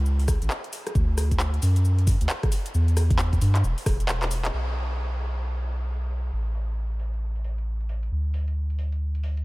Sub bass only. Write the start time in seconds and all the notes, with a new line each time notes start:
Already playing: C#2
0.42 A1
0.95 D2
1.62 F#2
2.21 D2
2.74 E2
3.41 G2
3.64 E1
3.86 E1
4.53 B1
6.32 A1
8.12 D2